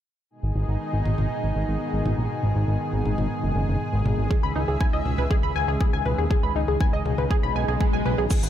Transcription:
0.30 G#2 B2 D#3 G#3 D#4 G#4
0.43 G#1
0.56 G#1
0.68 G#1
0.93 G#1
1.05 G#1, mid tom
1.18 G#1, mid tom
1.43 G#1
1.56 G#1
1.68 G#1
1.93 G#1
2.06 G#1, mid tom
2.18 A#1
2.43 G#1
2.56 G#1
2.68 G#1
2.93 G#1
3.05 G#1, mid tom
3.18 G#1, mid tom
3.43 F#1
3.56 F#1
3.68 F#1
3.93 G#1
4.05 G#1, mid tom
4.18 G#1
4.31 C#3 G#4 E5, kick
4.43 C#2 B5
4.56 C#2 D#4
4.68 C#2 G#4
4.81 G#5, kick
4.93 C#2 D#5
5.05 C#2, mid tom
5.18 C#2 B4, mid tom
5.31 G#4, kick
5.43 C#2 B5
5.56 C#2 G#5
5.68 C#2 G#4
5.81 G#4, kick
5.93 C#2 G#5
6.05 C#2 B4, mid tom
6.18 D#2 G#4
6.31 D#4 G#4, kick
6.43 C#2 B5
6.56 C#2 D#4
6.68 C#2 G#4
6.81 G#5, kick
6.93 C#2 D#5
7.05 C#2, mid tom
7.18 C#2 B4, mid tom
7.31 G#4, kick, swell
7.43 B1 B5
7.56 B1 G#5
7.68 B1 G#4
7.81 G#4, kick
7.93 B1 G#5
8.06 B1 B4, mid tom
8.18 B1 G#4
8.30 B2 D#3 G#3 D#4 G#4, kick, crash, shaker
8.43 G#1 B5, shaker

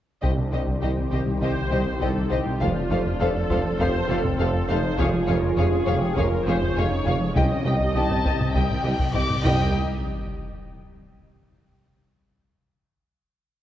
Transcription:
0.23 C2 C3 D#3 G3 D4 G4 C5 D#5, taiko
0.38 C3 G3
0.53 C2 C3 G3 G4 C5 D#5
0.67 C2 C3
0.82 C2 D#3 C4 G4 C5 D#5
0.97 C2 C4
1.12 C2 C3 G4 C5 D#5
1.27 C3 G3
1.42 C2 C3 G4 C5 D#5
1.57 C2
1.71 C2 C3 G3 G4 C5 D#5
1.86 C2 C3
2.01 C2 D#4 G4 A4 C5 D#5
2.16 C2 C4
2.31 C2 C3 G4 C5 D#5
2.46 C3 G3
2.60 F1 F2 F3 D4 F4 A4 C5 F5, taiko
2.75 F3 C4
2.90 F1 F2 F3 C4 A4 C5 F5
3.05 F2 F3
3.20 F1 F2 A3 A4 C5 F5
3.35 F2 F4
3.50 F1 F2 F3 A4 C5 F5, taiko
3.65 F3 C4
3.79 F1 F2 F3 C4 A4 C5 F5, taiko
3.95 F2
4.09 F1 F2 F3 C4 A4 C5 F5
4.24 F2 F3, taiko
4.39 F1 F2 A4 C5 F5
4.54 F2 F4
4.69 F1 F2 F3 D#4 A4 C5 F5
4.83 F3 C4
4.98 F1 F2 C#3 F4 G#4 C#5 F5, taiko
5.13 F3 G#3
5.28 F1 F2 F3 G#3 G#4 A#4 C#5 F5
5.42 F2 C#3
5.57 F1 F2 F3 G#4 C#5 F5
5.72 F2 C#4
5.87 F1 F2 C#3 G4 G#4 C#5 F5, taiko
6.02 F3 G#3
6.17 F1 F2 C#3 F4 G#4 A#4 C#5 F5, taiko
6.31 F2
6.46 F1 F2 F3 G#3 G#4 C5 C#5 F5
6.61 F2 C#3, taiko
6.76 F1 F2 D#4 G#4 C#5 F5
6.91 F2 C#4
7.06 F1 F2 C#3 G#4 C#5 F5
7.20 F3 G#3 C#4
7.35 C2 C3 G3 C#4 D#4 G4 D#5 G5, taiko, cymbal swell
7.50 C3 G3
7.65 C2 C3 G3 G4 D#5 G5
7.80 C2 C3
7.95 C2 D#3 C4 G4 D#5 A5
8.10 C2 C4, taiko low-mid
8.25 C2 C3 G4 D#5, taiko
8.40 C3 G3, taiko low-mid
8.55 C2 C3 G4 D#5 G5, taiko
8.70 C2, taiko low-mid
8.84 C2 C3 G3 G4 D#5
8.99 C2 C3, taiko
9.14 C2 G4 D#5 D6, taiko low-mid
9.29 C2 C4, taiko low-mid
9.44 C2 G3 C4 D#4 G4 D#5 G5, taiko, sub drop

